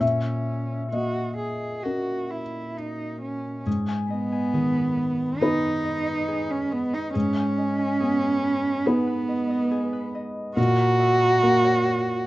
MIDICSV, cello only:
0, 0, Header, 1, 2, 480
1, 0, Start_track
1, 0, Key_signature, 5, "minor"
1, 0, Tempo, 911854
1, 8, Time_signature, 4, 2, 24, 8
1, 1929, Tempo, 870827
1, 3849, Tempo, 854701
1, 6724, End_track
2, 0, Start_track
2, 0, Title_t, "Cello"
2, 0, Program_c, 0, 42
2, 6, Note_on_c, 0, 61, 41
2, 432, Note_off_c, 0, 61, 0
2, 482, Note_on_c, 0, 66, 53
2, 712, Note_off_c, 0, 66, 0
2, 722, Note_on_c, 0, 68, 41
2, 966, Note_on_c, 0, 66, 44
2, 974, Note_off_c, 0, 68, 0
2, 1213, Note_on_c, 0, 64, 40
2, 1221, Note_off_c, 0, 66, 0
2, 1458, Note_on_c, 0, 63, 41
2, 1466, Note_off_c, 0, 64, 0
2, 1688, Note_off_c, 0, 63, 0
2, 1691, Note_on_c, 0, 61, 42
2, 1922, Note_off_c, 0, 61, 0
2, 2168, Note_on_c, 0, 59, 73
2, 2884, Note_on_c, 0, 63, 64
2, 2893, Note_off_c, 0, 59, 0
2, 3497, Note_on_c, 0, 61, 62
2, 3505, Note_off_c, 0, 63, 0
2, 3616, Note_on_c, 0, 59, 69
2, 3624, Note_off_c, 0, 61, 0
2, 3732, Note_on_c, 0, 63, 59
2, 3741, Note_off_c, 0, 59, 0
2, 3849, Note_off_c, 0, 63, 0
2, 3852, Note_on_c, 0, 61, 75
2, 4812, Note_on_c, 0, 59, 77
2, 4820, Note_off_c, 0, 61, 0
2, 5533, Note_off_c, 0, 59, 0
2, 5766, Note_on_c, 0, 66, 94
2, 6724, Note_off_c, 0, 66, 0
2, 6724, End_track
0, 0, End_of_file